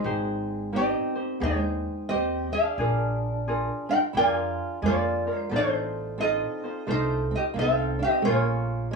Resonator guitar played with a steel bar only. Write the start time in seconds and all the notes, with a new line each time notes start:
Already playing: D#4 C5
0.76 G4 D#5
1.43 D#4 C5
2.09 G4 D#5
2.53 G#4 F5
3.91 A#4 G5
4.17 D5 G#5
4.86 F4 D5
5.38 C5
5.56 D#4 C5
6.21 A4 D#5
6.91 D#4 C5
7.35 G4 D#5
7.59 A4 E5
7.76 F5
8.03 G4 D#5
8.25 F4 C#5